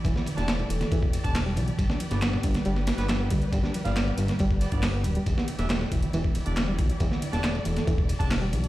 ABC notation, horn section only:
X:1
M:4/4
L:1/16
Q:1/4=138
K:Em
V:1 name="Horn section"
z3 [DGa] z6 z [DGa] z4 | z3 [B,Gd] z6 z [B,GB] z4 | z3 [B,G=f] z6 [B,Gd] [B,Gd] z4 | z3 [DGe] z6 z [DGd] z4 |
z3 [DGa] z6 z [DGa] z4 |]